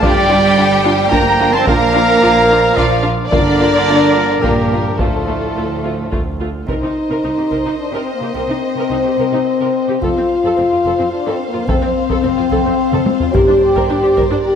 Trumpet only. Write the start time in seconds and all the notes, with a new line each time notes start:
0.02 D5
1.12 G5
1.53 A5
1.68 F5
2.77 D5
3.32 A#4
4.42 G4
4.98 F4